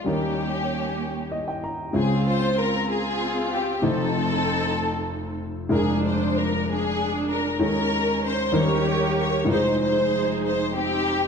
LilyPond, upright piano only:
\new Staff \with { instrumentName = "Upright piano" } { \time 6/8 \key des \lydian \tempo 4. = 64 << { r2 ees''16 g''16 bes''8 | r2. | r2. | r2. |
r2. | r2. | } \\ { <ees, ees g des' ees' bes'>2. | <des, des aes c' f' c''>2. | <f,, f, a ees' f' c''>2. | <f,, f, aes d' f' bes'>2. |
<ees, ees aes des' ees' a' bes'>4. <ees, ees g des' ees' bes'>4. | <f,, f, aes ees' f' ces'' c''>2. | } >> }